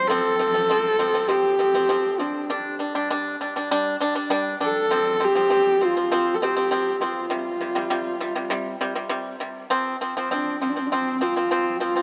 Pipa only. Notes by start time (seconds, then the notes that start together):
0.10 F3 C4
0.39 F3 C4
0.54 F3 C4
0.70 F3 C4
0.99 F3 C4
1.14 F3 C4
1.29 F3 C4
1.59 F3 C4
1.75 F3 C4
1.89 F3 C4
2.19 F3 C4
2.50 G3 D4
2.79 G3 D4
2.95 G3 D4
3.10 G3 D4
3.41 G3 D4
3.56 G3 D4
3.71 G3 D4
4.00 G3 D4
4.15 G3 D4
4.30 G3 D4
4.60 G3 D4
4.91 F3 C4
5.20 F3 C4
5.35 F3 C4
5.50 F3 C4
5.81 F3 C4
5.97 F3 C4
6.12 F3 C4
6.42 F3 C4
6.56 F3 C4
6.71 F3 C4
7.01 F3 C4
7.30 C3 G3
7.61 C3 G3
7.75 C3 G3
7.90 C3 G3
8.20 C3 G3
8.36 C3 G3
8.50 C3 G3
8.81 C3 G3
8.95 C3 G3
9.09 C3 G3
9.40 C3 G3
9.70 F3 C4
10.01 F3 C4
10.17 F3 C4
10.31 F3 C4
10.62 F3 C4
10.76 F3 C4
10.92 F3 C4
11.21 F3 C4
11.36 F3 C4
11.51 F3 C4
11.80 F3 C4
11.96 F3 C4